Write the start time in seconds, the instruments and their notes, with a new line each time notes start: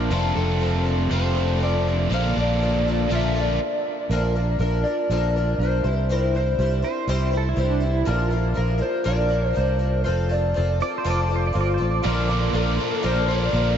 Already playing: overdriven electric guitar A#2 D3 A#3 D4 F4, twelve-string acoustic guitar A#3 D4 A#4
0.10 fingered electric bass F1, overdriven electric guitar F2 C3 A3 F4, twelve-string acoustic guitar F3 C4 D4 A4
0.35 fingered electric bass F1, twelve-string acoustic guitar C4 D4 A4, electric slide guitar A4
0.59 twelve-string acoustic guitar F3 C4 D4 A4
0.85 twelve-string acoustic guitar C4 D4 A4
1.10 fingered electric bass F1, overdriven electric guitar F2 C3 A3 F4, twelve-string acoustic guitar F3 C4 D4 A4, electric slide guitar C5
1.34 twelve-string acoustic guitar C4 D4 A4
1.60 twelve-string acoustic guitar F3 C4 D4 A4, electric slide guitar D5
1.87 twelve-string acoustic guitar C4 D4 A4
2.11 fingered electric bass A#1, twelve-string acoustic guitar A#2 D3 F3 A#3 D4 A4, overdriven electric guitar F4, electric slide guitar F5
2.37 fingered electric bass A#1, twelve-string acoustic guitar F3 A#3 D4 A4
2.41 electric slide guitar D5
2.61 twelve-string acoustic guitar F3 A#3 D4 A4
2.87 twelve-string acoustic guitar F3 A#3 D4 A4
2.91 electric slide guitar D5
3.10 fingered electric bass A#1, twelve-string acoustic guitar A#2 D3 F3 A#3 D4 A4, overdriven electric guitar F4
3.15 electric slide guitar E5
3.35 twelve-string acoustic guitar F3 A#3 D4 A4
3.41 electric slide guitar D5
4.09 fingered electric bass A#1, twelve-string acoustic guitar A#2 D3 F3 A#3 D4 A#4, upright piano D4 F4 A#4
4.35 twelve-string acoustic guitar F3 A#3 D4 A#4
4.59 fingered electric bass A#1, twelve-string acoustic guitar F3 A#3 D4 A#4, upright piano D4 F4 A#4, electric slide guitar A#4
4.84 twelve-string acoustic guitar F3 A#3 D4 A#4, electric slide guitar D5
5.09 fingered electric bass A#1, twelve-string acoustic guitar A#2 D3 F3 A#3 D4 A#4, upright piano D4 F4 A4
5.36 twelve-string acoustic guitar F3 A#3 D4 A#4
5.58 fingered electric bass B1, twelve-string acoustic guitar F3, upright piano D4 F4 A#4, electric slide guitar C5
5.63 twelve-string acoustic guitar A#3 D4 A#4
5.83 fingered electric bass C2, upright piano E4 G4 C5, twelve-string acoustic guitar E4 C5
5.87 twelve-string acoustic guitar C4
6.09 twelve-string acoustic guitar C3 G3 C4 E4 C5, electric slide guitar A#4
6.35 twelve-string acoustic guitar C4 E4 C5, electric slide guitar C5
6.58 fingered electric bass C2, twelve-string acoustic guitar G3 C4 E4 C5, upright piano E4 G4 C5
6.82 twelve-string acoustic guitar C4 E4 C5, pedal steel guitar C5
7.08 fingered electric bass C2, twelve-string acoustic guitar C3 G3 C4 E4 C5, upright piano E4 G4 C5
7.31 twelve-string acoustic guitar C4 E4 C5
7.37 pedal steel guitar A4
7.49 pedal steel guitar E4
7.56 fingered electric bass C2, twelve-string acoustic guitar G3 C4 E4 C5, upright piano E4 G4 C5
7.64 pedal steel guitar D4
7.80 twelve-string acoustic guitar C4 E4 C5
7.87 pedal steel guitar E4
8.05 fingered electric bass A#1, twelve-string acoustic guitar A#2 D3 F3 A#3 D4 A#4, upright piano F4 A#4 D5
8.15 pedal steel guitar F4
8.30 twelve-string acoustic guitar F3 A#3 D4 A#4
8.54 fingered electric bass A#1, twelve-string acoustic guitar F3 A#3 D4 A#4, upright piano F4 A#4, electric slide guitar A#4
8.58 upright piano F5
8.78 twelve-string acoustic guitar F3 A#3 D4 A#4
8.82 electric slide guitar C5
9.04 fingered electric bass A#1, twelve-string acoustic guitar A#2 D3 F3 A#3 D4 A#4, upright piano F4 A#4, electric slide guitar D5
9.08 upright piano F5
9.29 twelve-string acoustic guitar F3 A#3 D4 A#4
9.53 twelve-string acoustic guitar F3 A#3 D4 A#4, upright piano F4
9.57 fingered electric bass C2, upright piano A#4 D5, electric slide guitar C5
9.79 twelve-string acoustic guitar F3 A#3 D4 A#4
10.04 fingered electric bass F1, twelve-string acoustic guitar F3 C4 F4 A4, upright piano F4 A4 C5, electric slide guitar C5
10.29 twelve-string acoustic guitar C4 F4 A4, electric slide guitar D5
10.54 fingered electric bass F1, twelve-string acoustic guitar F3 C4 F4 A4, upright piano F4 A4
10.59 upright piano D5
10.80 twelve-string acoustic guitar C4 F4 A4, pedal steel guitar D5
10.98 pedal steel guitar C5
11.04 fingered electric bass F1, twelve-string acoustic guitar F3 C4 F4 A4, upright piano F4 A4 C5
11.10 pedal steel guitar D5
11.23 pedal steel guitar D5
11.28 twelve-string acoustic guitar C4 F4 A4
11.36 pedal steel guitar C5
11.47 pedal steel guitar D5
11.53 fingered electric bass G1, twelve-string acoustic guitar F3 C4 F4 A4, upright piano F4 A4 C5
11.61 pedal steel guitar D5
11.74 twelve-string acoustic guitar A4, pedal steel guitar C5
11.79 fingered electric bass A1, twelve-string acoustic guitar C4 F4
11.84 pedal steel guitar D5
12.02 fingered electric bass A#1, twelve-string acoustic guitar A#2 D3 F3 A#3 D4 A#4, upright piano F4 A#4 D5
12.07 overdriven electric guitar F4, pedal steel guitar D5
12.29 twelve-string acoustic guitar A#3 D4 A#4, overdriven electric guitar F4
12.53 fingered electric bass A#1, overdriven electric guitar D3 F4, twelve-string acoustic guitar F3 A#3 D4 A#4, upright piano F4 A#4 D5, electric slide guitar A#4
12.77 twelve-string acoustic guitar F3 A#3 D4 A#4, overdriven electric guitar F4
12.93 electric slide guitar A4
13.02 fingered electric bass A#1, twelve-string acoustic guitar A#2 D3 F3 A#3 D4 A#4, upright piano F4 A#4 D5, electric slide guitar C5
13.28 twelve-string acoustic guitar F3 A#3 D4 A#4, overdriven electric guitar F4, electric slide guitar D5
13.51 fingered electric bass A#1, overdriven electric guitar A#2 D3, twelve-string acoustic guitar F3 A#3 D4 A#4, upright piano F4 A#4 C5
13.56 overdriven electric guitar F4